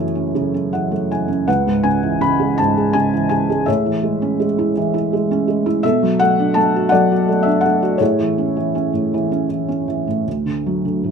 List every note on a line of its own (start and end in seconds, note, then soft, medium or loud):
0.00 1.44 F#2 medium
0.00 0.33 C#3 soft
0.00 0.73 E3 soft
0.00 0.90 A3 soft
0.00 0.31 E4 soft
0.00 0.31 A4 soft
0.00 1.50 C#5 medium
0.15 0.53 C#4 soft
0.35 1.45 C#3 soft
0.54 1.27 C#4 soft
0.73 1.09 E3 soft
0.73 1.08 F#5 soft
0.91 1.46 A3 soft
1.11 1.47 E3 soft
1.11 1.46 G#5 soft
1.28 1.47 C#4 soft
1.47 3.63 C#2 soft
1.47 2.55 B4 medium
1.47 1.86 F#5 medium
1.67 2.58 G#2 soft
1.83 2.19 C#3 soft
1.83 2.23 G#5 medium
2.03 3.12 E3 soft
2.21 2.93 C#3 soft
2.21 2.60 B5 medium
2.40 3.48 G#3 soft
2.58 3.65 G#2 medium
2.58 2.96 A5 medium
2.78 3.65 G#4 soft
2.93 3.30 C#3 soft
2.93 3.28 G#5 medium
3.13 3.66 E3 soft
3.29 3.66 C#3 soft
3.29 3.68 G#5 medium
3.50 3.67 G#3 soft
3.66 5.81 A2 medium
3.66 4.72 G#4 soft
3.66 4.72 C#5 soft
3.66 4.44 E5 medium
3.86 4.76 E3 soft
4.03 4.38 G#3 soft
4.22 5.30 C#4 soft
4.40 5.12 G#3 soft
4.58 4.92 E4 soft
4.77 5.82 E3 medium
4.94 5.65 E4 soft
5.13 5.46 G#3 soft
5.31 5.83 C#4 medium
5.48 5.83 G#3 soft
5.66 5.84 E4 medium
5.83 7.96 B2 medium
5.83 6.88 A4 medium
5.83 6.21 E5 medium
6.03 6.92 F#3 soft
6.19 6.55 A3 soft
6.19 6.57 F#5 medium
6.39 7.44 D4 medium
6.54 7.27 A3 medium
6.54 6.92 A5 medium
6.76 7.10 F#4 soft
6.89 7.96 A4 medium
6.89 7.96 D5 medium
6.89 7.46 F#5 medium
6.93 7.98 F#3 medium
7.12 7.81 F#4 soft
7.28 7.64 A3 soft
7.43 7.98 D4 soft
7.43 7.61 E5 medium
7.61 8.00 F#5 medium
7.65 8.00 A3 soft
7.83 8.00 F#4 medium
7.98 8.92 A2 medium
7.98 9.46 E4 soft
7.98 9.46 G#4 soft
7.98 9.44 C#5 medium
8.19 8.55 E3 soft
8.38 8.74 C#4 soft
8.57 9.13 E3 soft
8.75 9.30 C#4 soft
8.94 10.06 A2 soft
9.14 9.48 E3 medium
9.32 9.67 C#4 soft
9.49 9.86 E3 soft
9.68 10.25 C#4 soft
9.88 10.25 E3 soft
10.08 10.26 A2 soft
10.28 11.11 D2 soft
10.46 10.83 D3 soft
10.66 11.11 F#3 soft
10.85 11.11 D3 soft
11.04 11.11 A2 soft